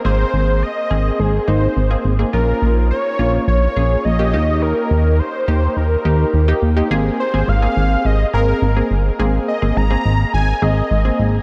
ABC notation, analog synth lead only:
X:1
M:4/4
L:1/8
Q:1/4=105
K:Ab
V:1 name="Analog synth lead"
c2 e2 A c2 z | B2 d2 d2 e2 | B2 c2 B3 z | z c f2 e B2 z |
z e b2 a e2 z |]